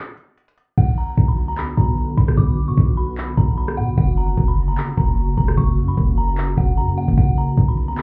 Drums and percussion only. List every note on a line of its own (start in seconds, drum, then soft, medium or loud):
0.17 closed hi-hat medium
0.38 closed hi-hat medium
0.48 closed hi-hat medium
0.58 closed hi-hat medium
0.78 kick loud
0.78 closed hi-hat medium
0.78 crash loud
0.98 open hi-hat medium
1.17 kick loud
1.17 closed hi-hat medium
1.38 closed hi-hat medium
1.43 closed hi-hat medium
1.48 closed hi-hat medium
1.53 closed hi-hat medium
1.58 clap loud
1.77 kick loud
1.77 closed hi-hat medium
1.98 closed hi-hat medium
2.18 kick medium
2.18 closed hi-hat medium
2.28 cross-stick loud
2.38 kick loud
2.38 closed hi-hat medium
2.77 kick loud
2.77 closed hi-hat medium
3.18 clap loud
3.18 closed hi-hat medium
3.37 kick loud
3.37 closed hi-hat medium
3.48 closed hi-hat soft
3.58 closed hi-hat medium
3.68 cross-stick loud
3.78 closed hi-hat medium
3.98 kick loud
3.98 closed hi-hat medium
4.18 open hi-hat medium
4.37 kick loud
4.37 closed hi-hat medium
4.58 closed hi-hat soft
4.63 closed hi-hat medium
4.68 closed hi-hat medium
4.73 closed hi-hat medium
4.78 clap loud
4.78 closed hi-hat medium
4.97 kick loud
4.97 closed hi-hat medium
5.18 closed hi-hat medium
5.38 kick medium
5.38 closed hi-hat medium
5.48 cross-stick loud
5.58 kick loud
5.58 closed hi-hat medium
5.78 open hi-hat medium
5.97 kick loud
5.97 closed hi-hat medium
6.38 clap loud
6.38 closed hi-hat medium
6.57 kick loud
6.57 closed hi-hat medium
6.78 closed hi-hat medium
6.88 closed hi-hat medium
6.98 closed hi-hat medium
7.08 kick medium
7.18 kick loud
7.18 closed hi-hat medium
7.38 open hi-hat medium
7.57 kick loud
7.57 closed hi-hat medium
7.78 closed hi-hat soft
7.83 closed hi-hat medium
7.88 closed hi-hat medium
7.93 closed hi-hat medium
7.98 clap loud
7.98 closed hi-hat medium